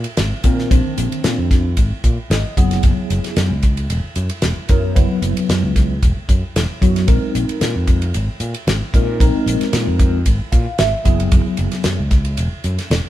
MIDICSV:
0, 0, Header, 1, 5, 480
1, 0, Start_track
1, 0, Tempo, 530504
1, 644, Time_signature, 4, 2, 24, 8
1, 11845, End_track
2, 0, Start_track
2, 0, Title_t, "Tine electric piano"
2, 0, Program_c, 0, 4
2, 398, Note_on_c, 0, 60, 75
2, 399, Note_on_c, 0, 51, 79
2, 402, Note_on_c, 0, 58, 76
2, 406, Note_on_c, 0, 70, 87
2, 620, Note_off_c, 0, 60, 0
2, 621, Note_off_c, 0, 51, 0
2, 622, Note_off_c, 0, 58, 0
2, 625, Note_off_c, 0, 70, 0
2, 634, Note_on_c, 0, 51, 74
2, 636, Note_on_c, 0, 60, 73
2, 638, Note_on_c, 0, 58, 70
2, 645, Note_on_c, 0, 62, 81
2, 1517, Note_off_c, 0, 51, 0
2, 1518, Note_off_c, 0, 60, 0
2, 1519, Note_off_c, 0, 58, 0
2, 1522, Note_off_c, 0, 62, 0
2, 2097, Note_on_c, 0, 75, 70
2, 2315, Note_off_c, 0, 75, 0
2, 2326, Note_on_c, 0, 54, 86
2, 2331, Note_on_c, 0, 64, 75
2, 2332, Note_on_c, 0, 59, 78
2, 2332, Note_on_c, 0, 68, 95
2, 2333, Note_on_c, 0, 78, 67
2, 2553, Note_off_c, 0, 78, 0
2, 3203, Note_off_c, 0, 54, 0
2, 3206, Note_off_c, 0, 59, 0
2, 3206, Note_off_c, 0, 64, 0
2, 3207, Note_off_c, 0, 68, 0
2, 4254, Note_on_c, 0, 70, 86
2, 4255, Note_on_c, 0, 54, 81
2, 4256, Note_on_c, 0, 59, 66
2, 4256, Note_on_c, 0, 64, 74
2, 4468, Note_off_c, 0, 59, 0
2, 4470, Note_off_c, 0, 70, 0
2, 4471, Note_off_c, 0, 54, 0
2, 4471, Note_off_c, 0, 64, 0
2, 4479, Note_on_c, 0, 59, 65
2, 4482, Note_on_c, 0, 54, 75
2, 4483, Note_on_c, 0, 71, 87
2, 4484, Note_on_c, 0, 64, 74
2, 5360, Note_off_c, 0, 59, 0
2, 5362, Note_off_c, 0, 54, 0
2, 5362, Note_off_c, 0, 71, 0
2, 5363, Note_off_c, 0, 64, 0
2, 6170, Note_on_c, 0, 54, 76
2, 6170, Note_on_c, 0, 59, 68
2, 6171, Note_on_c, 0, 64, 70
2, 6171, Note_on_c, 0, 66, 80
2, 6388, Note_off_c, 0, 54, 0
2, 6388, Note_off_c, 0, 59, 0
2, 6389, Note_off_c, 0, 64, 0
2, 6389, Note_off_c, 0, 66, 0
2, 6398, Note_on_c, 0, 63, 70
2, 6401, Note_on_c, 0, 56, 74
2, 6402, Note_on_c, 0, 60, 69
2, 6407, Note_on_c, 0, 70, 82
2, 7279, Note_off_c, 0, 63, 0
2, 7281, Note_off_c, 0, 56, 0
2, 7281, Note_off_c, 0, 60, 0
2, 7284, Note_off_c, 0, 70, 0
2, 8093, Note_on_c, 0, 63, 74
2, 8094, Note_on_c, 0, 56, 78
2, 8095, Note_on_c, 0, 60, 67
2, 8101, Note_on_c, 0, 70, 90
2, 8309, Note_off_c, 0, 63, 0
2, 8310, Note_off_c, 0, 56, 0
2, 8310, Note_off_c, 0, 60, 0
2, 8313, Note_off_c, 0, 70, 0
2, 8329, Note_on_c, 0, 56, 72
2, 8332, Note_on_c, 0, 63, 69
2, 8333, Note_on_c, 0, 60, 71
2, 8334, Note_on_c, 0, 70, 85
2, 9204, Note_off_c, 0, 56, 0
2, 9205, Note_off_c, 0, 63, 0
2, 9206, Note_off_c, 0, 60, 0
2, 9206, Note_off_c, 0, 70, 0
2, 9518, Note_on_c, 0, 77, 69
2, 9745, Note_off_c, 0, 77, 0
2, 9762, Note_on_c, 0, 76, 72
2, 9993, Note_on_c, 0, 54, 81
2, 9998, Note_on_c, 0, 59, 73
2, 9999, Note_on_c, 0, 64, 81
2, 10002, Note_on_c, 0, 68, 94
2, 10209, Note_off_c, 0, 76, 0
2, 10874, Note_off_c, 0, 54, 0
2, 10876, Note_off_c, 0, 59, 0
2, 10877, Note_off_c, 0, 64, 0
2, 10879, Note_off_c, 0, 68, 0
2, 11845, End_track
3, 0, Start_track
3, 0, Title_t, "Fretless electric bass"
3, 0, Program_c, 1, 35
3, 170, Note_on_c, 1, 32, 84
3, 283, Note_off_c, 1, 32, 0
3, 400, Note_on_c, 1, 46, 82
3, 622, Note_off_c, 1, 46, 0
3, 643, Note_on_c, 1, 34, 97
3, 760, Note_off_c, 1, 34, 0
3, 889, Note_on_c, 1, 34, 91
3, 1003, Note_off_c, 1, 34, 0
3, 1124, Note_on_c, 1, 46, 86
3, 1240, Note_off_c, 1, 46, 0
3, 1252, Note_on_c, 1, 41, 81
3, 1576, Note_off_c, 1, 41, 0
3, 1603, Note_on_c, 1, 32, 87
3, 1720, Note_off_c, 1, 32, 0
3, 1846, Note_on_c, 1, 46, 83
3, 1962, Note_off_c, 1, 46, 0
3, 2083, Note_on_c, 1, 32, 89
3, 2200, Note_off_c, 1, 32, 0
3, 2326, Note_on_c, 1, 30, 88
3, 2546, Note_off_c, 1, 30, 0
3, 2568, Note_on_c, 1, 30, 98
3, 2683, Note_off_c, 1, 30, 0
3, 2808, Note_on_c, 1, 30, 97
3, 2923, Note_off_c, 1, 30, 0
3, 3048, Note_on_c, 1, 42, 85
3, 3163, Note_off_c, 1, 42, 0
3, 3170, Note_on_c, 1, 37, 74
3, 3496, Note_off_c, 1, 37, 0
3, 3532, Note_on_c, 1, 28, 84
3, 3646, Note_off_c, 1, 28, 0
3, 3765, Note_on_c, 1, 42, 83
3, 3882, Note_off_c, 1, 42, 0
3, 4009, Note_on_c, 1, 28, 85
3, 4124, Note_off_c, 1, 28, 0
3, 4249, Note_on_c, 1, 42, 88
3, 4469, Note_off_c, 1, 42, 0
3, 4488, Note_on_c, 1, 30, 102
3, 4604, Note_off_c, 1, 30, 0
3, 4722, Note_on_c, 1, 30, 86
3, 4840, Note_off_c, 1, 30, 0
3, 4969, Note_on_c, 1, 42, 83
3, 5085, Note_off_c, 1, 42, 0
3, 5091, Note_on_c, 1, 37, 77
3, 5417, Note_off_c, 1, 37, 0
3, 5454, Note_on_c, 1, 28, 82
3, 5567, Note_off_c, 1, 28, 0
3, 5689, Note_on_c, 1, 42, 73
3, 5804, Note_off_c, 1, 42, 0
3, 5937, Note_on_c, 1, 28, 87
3, 6049, Note_off_c, 1, 28, 0
3, 6167, Note_on_c, 1, 42, 81
3, 6388, Note_off_c, 1, 42, 0
3, 6410, Note_on_c, 1, 34, 95
3, 6525, Note_off_c, 1, 34, 0
3, 6650, Note_on_c, 1, 34, 92
3, 6765, Note_off_c, 1, 34, 0
3, 6887, Note_on_c, 1, 46, 85
3, 7004, Note_off_c, 1, 46, 0
3, 7021, Note_on_c, 1, 41, 76
3, 7342, Note_off_c, 1, 41, 0
3, 7376, Note_on_c, 1, 32, 85
3, 7485, Note_off_c, 1, 32, 0
3, 7601, Note_on_c, 1, 46, 79
3, 7720, Note_off_c, 1, 46, 0
3, 7846, Note_on_c, 1, 32, 86
3, 7963, Note_off_c, 1, 32, 0
3, 8091, Note_on_c, 1, 46, 85
3, 8309, Note_off_c, 1, 46, 0
3, 8328, Note_on_c, 1, 34, 96
3, 8443, Note_off_c, 1, 34, 0
3, 8562, Note_on_c, 1, 34, 87
3, 8680, Note_off_c, 1, 34, 0
3, 8806, Note_on_c, 1, 46, 90
3, 8922, Note_off_c, 1, 46, 0
3, 8933, Note_on_c, 1, 41, 83
3, 9257, Note_off_c, 1, 41, 0
3, 9282, Note_on_c, 1, 32, 92
3, 9400, Note_off_c, 1, 32, 0
3, 9524, Note_on_c, 1, 46, 86
3, 9640, Note_off_c, 1, 46, 0
3, 9769, Note_on_c, 1, 32, 85
3, 9883, Note_off_c, 1, 32, 0
3, 10005, Note_on_c, 1, 30, 87
3, 10225, Note_off_c, 1, 30, 0
3, 10246, Note_on_c, 1, 30, 95
3, 10361, Note_off_c, 1, 30, 0
3, 10484, Note_on_c, 1, 30, 94
3, 10599, Note_off_c, 1, 30, 0
3, 10719, Note_on_c, 1, 42, 91
3, 10837, Note_off_c, 1, 42, 0
3, 10851, Note_on_c, 1, 37, 82
3, 11174, Note_off_c, 1, 37, 0
3, 11203, Note_on_c, 1, 28, 88
3, 11319, Note_off_c, 1, 28, 0
3, 11440, Note_on_c, 1, 42, 86
3, 11557, Note_off_c, 1, 42, 0
3, 11675, Note_on_c, 1, 28, 83
3, 11794, Note_off_c, 1, 28, 0
3, 11845, End_track
4, 0, Start_track
4, 0, Title_t, "Muted fretless electric bass strokes"
4, 296, Note_on_c, 9, 29, 32
4, 386, Note_off_c, 9, 29, 0
4, 1013, Note_on_c, 9, 29, 35
4, 1103, Note_off_c, 9, 29, 0
4, 1733, Note_on_c, 9, 29, 35
4, 1824, Note_off_c, 9, 29, 0
4, 2933, Note_on_c, 9, 29, 37
4, 3024, Note_off_c, 9, 29, 0
4, 3657, Note_on_c, 9, 29, 36
4, 3748, Note_off_c, 9, 29, 0
4, 4134, Note_on_c, 9, 29, 33
4, 4224, Note_off_c, 9, 29, 0
4, 4859, Note_on_c, 9, 29, 33
4, 4950, Note_off_c, 9, 29, 0
4, 5582, Note_on_c, 9, 29, 32
4, 5673, Note_off_c, 9, 29, 0
4, 6541, Note_on_c, 9, 29, 35
4, 6631, Note_off_c, 9, 29, 0
4, 7491, Note_on_c, 9, 29, 34
4, 7581, Note_off_c, 9, 29, 0
4, 7975, Note_on_c, 9, 29, 34
4, 8066, Note_off_c, 9, 29, 0
4, 9417, Note_on_c, 9, 29, 35
4, 9507, Note_off_c, 9, 29, 0
4, 9897, Note_on_c, 9, 29, 32
4, 9988, Note_off_c, 9, 29, 0
4, 10371, Note_on_c, 9, 29, 41
4, 10462, Note_off_c, 9, 29, 0
4, 11334, Note_on_c, 9, 29, 36
4, 11425, Note_off_c, 9, 29, 0
4, 11845, End_track
5, 0, Start_track
5, 0, Title_t, "Drums"
5, 36, Note_on_c, 9, 51, 64
5, 126, Note_off_c, 9, 51, 0
5, 154, Note_on_c, 9, 44, 84
5, 154, Note_on_c, 9, 51, 80
5, 157, Note_on_c, 9, 38, 103
5, 244, Note_off_c, 9, 44, 0
5, 244, Note_off_c, 9, 51, 0
5, 248, Note_off_c, 9, 38, 0
5, 394, Note_on_c, 9, 44, 84
5, 394, Note_on_c, 9, 51, 62
5, 399, Note_on_c, 9, 36, 79
5, 485, Note_off_c, 9, 44, 0
5, 485, Note_off_c, 9, 51, 0
5, 489, Note_off_c, 9, 36, 0
5, 529, Note_on_c, 9, 38, 29
5, 619, Note_off_c, 9, 38, 0
5, 643, Note_on_c, 9, 36, 95
5, 645, Note_on_c, 9, 44, 74
5, 645, Note_on_c, 9, 51, 78
5, 733, Note_off_c, 9, 36, 0
5, 735, Note_off_c, 9, 44, 0
5, 735, Note_off_c, 9, 51, 0
5, 882, Note_on_c, 9, 44, 83
5, 882, Note_on_c, 9, 51, 61
5, 973, Note_off_c, 9, 44, 0
5, 973, Note_off_c, 9, 51, 0
5, 1015, Note_on_c, 9, 51, 60
5, 1105, Note_off_c, 9, 51, 0
5, 1121, Note_on_c, 9, 44, 74
5, 1121, Note_on_c, 9, 51, 68
5, 1125, Note_on_c, 9, 38, 99
5, 1212, Note_off_c, 9, 44, 0
5, 1212, Note_off_c, 9, 51, 0
5, 1215, Note_off_c, 9, 38, 0
5, 1364, Note_on_c, 9, 36, 76
5, 1367, Note_on_c, 9, 44, 75
5, 1367, Note_on_c, 9, 51, 52
5, 1370, Note_on_c, 9, 38, 29
5, 1455, Note_off_c, 9, 36, 0
5, 1457, Note_off_c, 9, 44, 0
5, 1457, Note_off_c, 9, 51, 0
5, 1461, Note_off_c, 9, 38, 0
5, 1600, Note_on_c, 9, 44, 71
5, 1600, Note_on_c, 9, 51, 72
5, 1604, Note_on_c, 9, 36, 66
5, 1690, Note_off_c, 9, 44, 0
5, 1690, Note_off_c, 9, 51, 0
5, 1695, Note_off_c, 9, 36, 0
5, 1844, Note_on_c, 9, 44, 74
5, 1844, Note_on_c, 9, 51, 55
5, 1846, Note_on_c, 9, 36, 72
5, 1935, Note_off_c, 9, 44, 0
5, 1935, Note_off_c, 9, 51, 0
5, 1936, Note_off_c, 9, 36, 0
5, 2089, Note_on_c, 9, 44, 75
5, 2089, Note_on_c, 9, 51, 74
5, 2092, Note_on_c, 9, 38, 100
5, 2179, Note_off_c, 9, 44, 0
5, 2179, Note_off_c, 9, 51, 0
5, 2183, Note_off_c, 9, 38, 0
5, 2327, Note_on_c, 9, 36, 80
5, 2329, Note_on_c, 9, 44, 78
5, 2329, Note_on_c, 9, 51, 51
5, 2418, Note_off_c, 9, 36, 0
5, 2419, Note_off_c, 9, 44, 0
5, 2419, Note_off_c, 9, 51, 0
5, 2451, Note_on_c, 9, 51, 56
5, 2454, Note_on_c, 9, 38, 30
5, 2541, Note_off_c, 9, 51, 0
5, 2545, Note_off_c, 9, 38, 0
5, 2559, Note_on_c, 9, 44, 74
5, 2559, Note_on_c, 9, 51, 64
5, 2566, Note_on_c, 9, 36, 96
5, 2650, Note_off_c, 9, 44, 0
5, 2650, Note_off_c, 9, 51, 0
5, 2656, Note_off_c, 9, 36, 0
5, 2807, Note_on_c, 9, 44, 85
5, 2807, Note_on_c, 9, 51, 57
5, 2897, Note_off_c, 9, 44, 0
5, 2897, Note_off_c, 9, 51, 0
5, 2933, Note_on_c, 9, 51, 57
5, 2937, Note_on_c, 9, 38, 31
5, 3024, Note_off_c, 9, 51, 0
5, 3027, Note_off_c, 9, 38, 0
5, 3043, Note_on_c, 9, 44, 75
5, 3043, Note_on_c, 9, 51, 69
5, 3047, Note_on_c, 9, 38, 92
5, 3134, Note_off_c, 9, 44, 0
5, 3134, Note_off_c, 9, 51, 0
5, 3138, Note_off_c, 9, 38, 0
5, 3279, Note_on_c, 9, 44, 76
5, 3279, Note_on_c, 9, 51, 54
5, 3287, Note_on_c, 9, 36, 71
5, 3370, Note_off_c, 9, 44, 0
5, 3370, Note_off_c, 9, 51, 0
5, 3377, Note_off_c, 9, 36, 0
5, 3412, Note_on_c, 9, 51, 55
5, 3502, Note_off_c, 9, 51, 0
5, 3527, Note_on_c, 9, 44, 75
5, 3527, Note_on_c, 9, 51, 70
5, 3617, Note_off_c, 9, 44, 0
5, 3617, Note_off_c, 9, 51, 0
5, 3759, Note_on_c, 9, 44, 76
5, 3759, Note_on_c, 9, 51, 59
5, 3849, Note_off_c, 9, 44, 0
5, 3849, Note_off_c, 9, 51, 0
5, 3885, Note_on_c, 9, 51, 64
5, 3976, Note_off_c, 9, 51, 0
5, 3997, Note_on_c, 9, 44, 80
5, 3997, Note_on_c, 9, 51, 73
5, 4001, Note_on_c, 9, 38, 96
5, 4088, Note_off_c, 9, 44, 0
5, 4088, Note_off_c, 9, 51, 0
5, 4091, Note_off_c, 9, 38, 0
5, 4239, Note_on_c, 9, 44, 76
5, 4239, Note_on_c, 9, 51, 63
5, 4247, Note_on_c, 9, 36, 79
5, 4330, Note_off_c, 9, 44, 0
5, 4330, Note_off_c, 9, 51, 0
5, 4338, Note_off_c, 9, 36, 0
5, 4490, Note_on_c, 9, 36, 95
5, 4491, Note_on_c, 9, 44, 71
5, 4491, Note_on_c, 9, 51, 81
5, 4580, Note_off_c, 9, 36, 0
5, 4582, Note_off_c, 9, 44, 0
5, 4582, Note_off_c, 9, 51, 0
5, 4726, Note_on_c, 9, 44, 87
5, 4726, Note_on_c, 9, 51, 61
5, 4816, Note_off_c, 9, 44, 0
5, 4816, Note_off_c, 9, 51, 0
5, 4857, Note_on_c, 9, 51, 63
5, 4947, Note_off_c, 9, 51, 0
5, 4971, Note_on_c, 9, 44, 72
5, 4971, Note_on_c, 9, 51, 71
5, 4974, Note_on_c, 9, 38, 88
5, 5061, Note_off_c, 9, 44, 0
5, 5061, Note_off_c, 9, 51, 0
5, 5065, Note_off_c, 9, 38, 0
5, 5210, Note_on_c, 9, 44, 69
5, 5210, Note_on_c, 9, 51, 55
5, 5211, Note_on_c, 9, 36, 73
5, 5214, Note_on_c, 9, 38, 29
5, 5301, Note_off_c, 9, 36, 0
5, 5301, Note_off_c, 9, 44, 0
5, 5301, Note_off_c, 9, 51, 0
5, 5304, Note_off_c, 9, 38, 0
5, 5452, Note_on_c, 9, 36, 73
5, 5452, Note_on_c, 9, 44, 70
5, 5452, Note_on_c, 9, 51, 66
5, 5542, Note_off_c, 9, 44, 0
5, 5542, Note_off_c, 9, 51, 0
5, 5543, Note_off_c, 9, 36, 0
5, 5690, Note_on_c, 9, 36, 76
5, 5692, Note_on_c, 9, 44, 82
5, 5692, Note_on_c, 9, 51, 60
5, 5780, Note_off_c, 9, 36, 0
5, 5782, Note_off_c, 9, 44, 0
5, 5782, Note_off_c, 9, 51, 0
5, 5935, Note_on_c, 9, 44, 80
5, 5935, Note_on_c, 9, 51, 75
5, 5938, Note_on_c, 9, 38, 96
5, 6025, Note_off_c, 9, 44, 0
5, 6025, Note_off_c, 9, 51, 0
5, 6029, Note_off_c, 9, 38, 0
5, 6170, Note_on_c, 9, 36, 75
5, 6174, Note_on_c, 9, 44, 75
5, 6174, Note_on_c, 9, 51, 53
5, 6260, Note_off_c, 9, 36, 0
5, 6265, Note_off_c, 9, 44, 0
5, 6265, Note_off_c, 9, 51, 0
5, 6297, Note_on_c, 9, 51, 55
5, 6301, Note_on_c, 9, 38, 30
5, 6388, Note_off_c, 9, 51, 0
5, 6392, Note_off_c, 9, 38, 0
5, 6403, Note_on_c, 9, 44, 77
5, 6403, Note_on_c, 9, 51, 67
5, 6407, Note_on_c, 9, 36, 98
5, 6494, Note_off_c, 9, 44, 0
5, 6494, Note_off_c, 9, 51, 0
5, 6498, Note_off_c, 9, 36, 0
5, 6650, Note_on_c, 9, 44, 80
5, 6650, Note_on_c, 9, 51, 56
5, 6740, Note_off_c, 9, 44, 0
5, 6740, Note_off_c, 9, 51, 0
5, 6777, Note_on_c, 9, 51, 58
5, 6868, Note_off_c, 9, 51, 0
5, 6886, Note_on_c, 9, 44, 70
5, 6886, Note_on_c, 9, 51, 68
5, 6890, Note_on_c, 9, 38, 88
5, 6977, Note_off_c, 9, 44, 0
5, 6977, Note_off_c, 9, 51, 0
5, 6980, Note_off_c, 9, 38, 0
5, 7124, Note_on_c, 9, 44, 72
5, 7124, Note_on_c, 9, 51, 55
5, 7125, Note_on_c, 9, 36, 73
5, 7215, Note_off_c, 9, 44, 0
5, 7215, Note_off_c, 9, 51, 0
5, 7216, Note_off_c, 9, 36, 0
5, 7254, Note_on_c, 9, 51, 56
5, 7344, Note_off_c, 9, 51, 0
5, 7367, Note_on_c, 9, 44, 75
5, 7367, Note_on_c, 9, 51, 69
5, 7457, Note_off_c, 9, 44, 0
5, 7457, Note_off_c, 9, 51, 0
5, 7600, Note_on_c, 9, 44, 79
5, 7600, Note_on_c, 9, 51, 59
5, 7690, Note_off_c, 9, 44, 0
5, 7690, Note_off_c, 9, 51, 0
5, 7730, Note_on_c, 9, 51, 63
5, 7820, Note_off_c, 9, 51, 0
5, 7848, Note_on_c, 9, 44, 76
5, 7848, Note_on_c, 9, 51, 75
5, 7852, Note_on_c, 9, 38, 109
5, 7938, Note_off_c, 9, 44, 0
5, 7938, Note_off_c, 9, 51, 0
5, 7942, Note_off_c, 9, 38, 0
5, 8087, Note_on_c, 9, 36, 78
5, 8090, Note_on_c, 9, 44, 84
5, 8090, Note_on_c, 9, 51, 61
5, 8177, Note_off_c, 9, 36, 0
5, 8181, Note_off_c, 9, 44, 0
5, 8181, Note_off_c, 9, 51, 0
5, 8327, Note_on_c, 9, 36, 91
5, 8333, Note_on_c, 9, 44, 75
5, 8333, Note_on_c, 9, 51, 77
5, 8418, Note_off_c, 9, 36, 0
5, 8423, Note_off_c, 9, 44, 0
5, 8423, Note_off_c, 9, 51, 0
5, 8572, Note_on_c, 9, 44, 83
5, 8572, Note_on_c, 9, 51, 68
5, 8662, Note_off_c, 9, 44, 0
5, 8662, Note_off_c, 9, 51, 0
5, 8694, Note_on_c, 9, 51, 61
5, 8697, Note_on_c, 9, 38, 31
5, 8784, Note_off_c, 9, 51, 0
5, 8788, Note_off_c, 9, 38, 0
5, 8802, Note_on_c, 9, 44, 74
5, 8802, Note_on_c, 9, 51, 75
5, 8806, Note_on_c, 9, 38, 86
5, 8893, Note_off_c, 9, 44, 0
5, 8893, Note_off_c, 9, 51, 0
5, 8897, Note_off_c, 9, 38, 0
5, 9042, Note_on_c, 9, 44, 73
5, 9042, Note_on_c, 9, 51, 56
5, 9043, Note_on_c, 9, 36, 78
5, 9133, Note_off_c, 9, 44, 0
5, 9133, Note_off_c, 9, 51, 0
5, 9134, Note_off_c, 9, 36, 0
5, 9280, Note_on_c, 9, 44, 72
5, 9280, Note_on_c, 9, 51, 75
5, 9283, Note_on_c, 9, 36, 67
5, 9370, Note_off_c, 9, 44, 0
5, 9370, Note_off_c, 9, 51, 0
5, 9374, Note_off_c, 9, 36, 0
5, 9521, Note_on_c, 9, 44, 81
5, 9521, Note_on_c, 9, 51, 59
5, 9524, Note_on_c, 9, 36, 78
5, 9611, Note_off_c, 9, 44, 0
5, 9611, Note_off_c, 9, 51, 0
5, 9614, Note_off_c, 9, 36, 0
5, 9757, Note_on_c, 9, 44, 82
5, 9757, Note_on_c, 9, 51, 73
5, 9761, Note_on_c, 9, 38, 106
5, 9848, Note_off_c, 9, 44, 0
5, 9848, Note_off_c, 9, 51, 0
5, 9852, Note_off_c, 9, 38, 0
5, 10000, Note_on_c, 9, 44, 77
5, 10000, Note_on_c, 9, 51, 59
5, 10003, Note_on_c, 9, 36, 76
5, 10091, Note_off_c, 9, 44, 0
5, 10091, Note_off_c, 9, 51, 0
5, 10094, Note_off_c, 9, 36, 0
5, 10131, Note_on_c, 9, 51, 56
5, 10222, Note_off_c, 9, 51, 0
5, 10238, Note_on_c, 9, 44, 74
5, 10238, Note_on_c, 9, 51, 75
5, 10242, Note_on_c, 9, 36, 99
5, 10329, Note_off_c, 9, 44, 0
5, 10329, Note_off_c, 9, 51, 0
5, 10332, Note_off_c, 9, 36, 0
5, 10470, Note_on_c, 9, 44, 81
5, 10470, Note_on_c, 9, 51, 59
5, 10560, Note_off_c, 9, 44, 0
5, 10560, Note_off_c, 9, 51, 0
5, 10600, Note_on_c, 9, 51, 57
5, 10603, Note_on_c, 9, 38, 31
5, 10690, Note_off_c, 9, 51, 0
5, 10694, Note_off_c, 9, 38, 0
5, 10710, Note_on_c, 9, 44, 71
5, 10710, Note_on_c, 9, 51, 64
5, 10714, Note_on_c, 9, 38, 95
5, 10801, Note_off_c, 9, 44, 0
5, 10801, Note_off_c, 9, 51, 0
5, 10804, Note_off_c, 9, 38, 0
5, 10955, Note_on_c, 9, 44, 80
5, 10955, Note_on_c, 9, 51, 50
5, 10958, Note_on_c, 9, 38, 29
5, 10959, Note_on_c, 9, 36, 75
5, 11045, Note_off_c, 9, 44, 0
5, 11045, Note_off_c, 9, 51, 0
5, 11049, Note_off_c, 9, 36, 0
5, 11049, Note_off_c, 9, 38, 0
5, 11080, Note_on_c, 9, 51, 57
5, 11171, Note_off_c, 9, 51, 0
5, 11194, Note_on_c, 9, 44, 77
5, 11194, Note_on_c, 9, 51, 69
5, 11285, Note_off_c, 9, 44, 0
5, 11285, Note_off_c, 9, 51, 0
5, 11435, Note_on_c, 9, 44, 77
5, 11435, Note_on_c, 9, 51, 58
5, 11525, Note_off_c, 9, 44, 0
5, 11525, Note_off_c, 9, 51, 0
5, 11568, Note_on_c, 9, 51, 64
5, 11571, Note_on_c, 9, 38, 31
5, 11658, Note_off_c, 9, 51, 0
5, 11662, Note_off_c, 9, 38, 0
5, 11681, Note_on_c, 9, 44, 76
5, 11681, Note_on_c, 9, 51, 77
5, 11684, Note_on_c, 9, 38, 104
5, 11771, Note_off_c, 9, 44, 0
5, 11771, Note_off_c, 9, 51, 0
5, 11775, Note_off_c, 9, 38, 0
5, 11845, End_track
0, 0, End_of_file